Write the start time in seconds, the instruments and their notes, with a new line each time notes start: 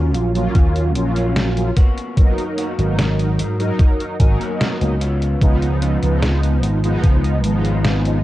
Already playing: slap bass D#2, analog polysynth F#3 A#3 C#4 F4
0.14 slap bass A#1, muted clean electric guitar stroke, closed hi-hat
0.34 analog polysynth F#3 A#3 C#4 F4, closed hi-hat
0.55 slap bass D#2, muted clean electric guitar stroke, kick, closed hi-hat
0.75 muted clean electric guitar stroke, closed hi-hat
0.95 slap bass A#1, analog polysynth F#3 A#3 C#4 F4, closed hi-hat
1.16 clean electric guitar F#3 C#4 F4, closed hi-hat
1.36 snare, closed hi-hat
1.56 analog polysynth F#3 A#3 C#4 F4, closed hi-hat
1.76 clean electric guitar A#3 B3 F#4, kick, closed hi-hat
1.98 closed hi-hat
2.16 analog polysynth F#3 D#4 A#4, kick, closed hi-hat
2.38 closed hi-hat
2.57 clean electric guitar A#3 B3 F#4, closed hi-hat
2.78 slap bass G#1, analog polysynth F#3 D#4 A#4, closed hi-hat
2.99 snare, closed hi-hat
3.19 closed hi-hat
3.38 slap bass G#2, muted clean electric guitar stroke, closed hi-hat
3.58 analog polysynth F#3 D#4 A#4, closed hi-hat
3.78 muted clean electric guitar stroke, kick, closed hi-hat
3.99 muted clean electric guitar stroke, closed hi-hat
4.19 slap bass G#1, analog polysynth F#3 D#4 A#4, clean electric guitar G#5, kick, closed hi-hat
4.40 clean electric guitar A#3 B3 F#4, closed hi-hat
4.60 clean electric guitar D#5, snare, closed hi-hat
4.80 slap bass C#2, analog polysynth F#3 A#3 B3 D#4, closed hi-hat
5.00 clean electric guitar B3 C#4 F4 C#5, closed hi-hat
5.22 closed hi-hat
5.41 slap bass C#2, analog polysynth F3 G#3 B3 D#4, kick, closed hi-hat
5.62 closed hi-hat
5.81 clean electric guitar B3 C#4 F4, closed hi-hat
6.02 slap bass C#2, analog polysynth F3 G#3 B3 D#4, closed hi-hat
6.23 snare, closed hi-hat
6.43 closed hi-hat
6.62 slap bass G#1, muted clean electric guitar stroke, closed hi-hat
6.83 analog polysynth F3 G#3 B3 D#4, closed hi-hat
7.03 slap bass C#2, muted clean electric guitar stroke, kick, closed hi-hat
7.24 muted clean electric guitar stroke, closed hi-hat
7.44 slap bass G#1, analog polysynth F3 G#3 B3 D#4, closed hi-hat
7.64 clean electric guitar B3 C#4 F4, closed hi-hat
7.85 snare, closed hi-hat
8.05 analog polysynth F3 G#3 B3 D#4, closed hi-hat